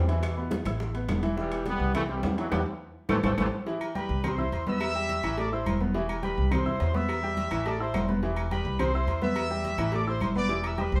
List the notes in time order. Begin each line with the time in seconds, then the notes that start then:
Already playing: E2
0.08 B2 E3 E4 E5, high bongo, high conga, high timbale
0.23 high bongo, high conga, high timbale, claves
0.37 B3 B4 B5, high bongo, high conga
0.51 high bongo, high conga, high timbale, low timbale
0.65 A1 E4 E5 E6, high conga, high timbale, claves
0.80 high bongo, high conga
0.94 B3 B4 B5, high bongo, high conga, high timbale
1.09 E1, high bongo, low bongo, high conga, high timbale, low timbale, claves
1.23 E3 E4 E5, high bongo, high conga, high timbale
1.37 E3 G3 E4 E5, high bongo, high conga
1.51 high bongo, high conga, high timbale, claves
1.65 G3 B3 G4 G5, high bongo, high conga, high timbale, low timbale
1.80 C2, high conga
1.94 E3 A3 E4 E5, high bongo, high conga, low conga, high timbale, claves
2.09 E3 G3 C4 C5 C6, high bongo, high conga
2.23 E2, high bongo, low bongo, high conga, high timbale, low timbale
2.38 B2 E3 F#3 E4 E5, high bongo, high timbale
2.51 E2 F#3 G3 B3 G4 B4 E5, low bongo, high conga, high timbale, claves
3.09 A1 C3 E3 A3 A4 B4 C5, low bongo, high conga, high timbale, claves
3.23 A1 C3 E3 A3 A4 B4 C5, low bongo, high conga, high timbale, claves
3.38 A1 C3 E3 A3 A4 B4 C5, low bongo, high conga, high timbale, claves
3.66 E3 E4 E5, cowbell, high conga
3.81 high conga, low agogo, claves
3.95 G3 G4 B4 G5 B5, cowbell, high conga, low agogo
4.09 C2, high conga
4.24 C4 C5 C6, cowbell, high conga, low conga, low agogo, claves
4.38 E4 E5 E6, high conga, low conga
4.52 E2, cowbell, high conga, low agogo
4.67 B3 B4 E5 B5 E6, cowbell, high conga
4.81 cowbell, low agogo, claves
4.95 G3 G4 G5, high conga
5.09 cowbell, high conga, low agogo
5.23 A1 E3 E4 E5, cowbell, high conga, low agogo, claves
5.37 A3 A4 D5 A5 D6, cowbell, high conga, low agogo
5.52 E4 C5 E5 C6 E6, high conga
5.66 E1, cowbell, high conga, low agogo, claves
5.81 B3 B4 B5, high conga
5.94 E3 E4 E5, cowbell, high conga
6.09 high conga, low agogo, claves
6.22 G3 G4 B4 G5 B5, cowbell, high conga, low agogo
6.37 C2, high conga
6.51 C4 C5 C6, cowbell, high conga, low conga, low agogo, claves
6.65 E4 E5 E6, high conga, low conga
6.80 E2, cowbell, high conga, low timbale, low agogo
6.94 B3 B4 E5 B5 E6, cowbell, high conga
7.09 cowbell, low agogo, claves
7.23 G3 G4 G5, high conga
7.37 cowbell, high conga, low agogo
7.51 A1 E3 E4 E5, cowbell, high conga, low agogo, claves
7.66 A3 A4 D5 A5 D6, cowbell, high conga, low agogo
7.80 E4 C5 E5 C6 E6, high conga
7.94 E1, cowbell, high conga, low timbale, low agogo, claves
8.08 B3 B4 B5, high conga
8.23 E3 E4 E5, cowbell, high conga
8.36 high conga, low agogo, claves
8.51 G3 G4 B4 G5 B5, cowbell, high conga, low agogo
8.65 C2, high conga
8.79 C4 C5 C6, cowbell, high conga, low conga, low agogo, claves
8.94 E4 E5 E6, high conga
9.07 E2, cowbell, high conga, low agogo
9.22 B3 B4 E5 B5 E6, cowbell, high conga
9.36 cowbell, low agogo, claves
9.50 G3 G4 G5, high conga
9.64 cowbell, high conga, low agogo
9.78 A1 E3 E4 E5, cowbell, low agogo, claves
9.92 A3 A4 D5 A5 D6, cowbell, high conga, low agogo
10.07 E4 C5 E5 C6 E6, high conga
10.20 E1 C5 C6, cowbell, high conga, low agogo, claves
10.35 B3 B4 D5 B5 D6, high conga
10.49 E3 E4 E5, cowbell
10.64 E5 E6, high conga, low agogo, claves
10.78 G3 G4 B4 G5 B5, cowbell, high conga, low agogo
10.92 C2 C5 C6, high conga